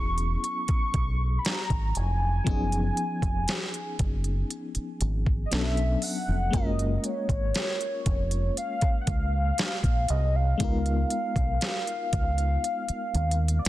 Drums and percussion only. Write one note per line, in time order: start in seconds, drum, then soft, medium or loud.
0.18 closed hi-hat soft
0.44 closed hi-hat medium
0.68 kick loud
0.68 closed hi-hat soft
0.94 kick loud
0.94 closed hi-hat medium
1.45 snare loud
1.45 closed hi-hat medium
1.70 kick medium
1.70 closed hi-hat soft
1.95 closed hi-hat medium
2.47 kick loud
2.47 closed hi-hat medium
2.72 closed hi-hat soft
2.97 closed hi-hat medium
3.22 kick medium
3.22 closed hi-hat medium
3.48 snare loud
3.48 closed hi-hat medium
3.74 closed hi-hat medium
3.99 kick medium
3.99 closed hi-hat medium
4.24 closed hi-hat soft
4.50 closed hi-hat medium
4.75 closed hi-hat soft
5.01 closed hi-hat medium
5.26 kick medium
5.52 snare loud
5.52 closed hi-hat medium
5.77 closed hi-hat soft
6.02 open hi-hat medium
6.53 kick loud
6.53 closed hi-hat medium
6.79 closed hi-hat medium
7.04 closed hi-hat medium
7.29 kick medium
7.29 closed hi-hat medium
7.54 snare loud
7.54 closed hi-hat medium
7.81 closed hi-hat medium
8.06 kick medium
8.06 closed hi-hat medium
8.31 closed hi-hat soft
8.57 closed hi-hat medium
8.81 kick medium
8.81 closed hi-hat soft
9.07 kick loud
9.07 closed hi-hat medium
9.58 snare loud
9.58 closed hi-hat medium
9.83 kick medium
9.83 closed hi-hat soft
10.08 closed hi-hat medium
10.60 kick loud
10.60 closed hi-hat medium
10.86 closed hi-hat soft
11.10 closed hi-hat medium
11.36 kick medium
11.36 closed hi-hat medium
11.61 snare loud
11.61 closed hi-hat medium
11.87 closed hi-hat medium
12.13 kick medium
12.13 closed hi-hat medium
12.38 closed hi-hat soft
12.64 closed hi-hat medium
12.88 closed hi-hat soft
13.15 closed hi-hat soft
13.31 closed hi-hat medium
13.48 closed hi-hat medium
13.65 closed hi-hat medium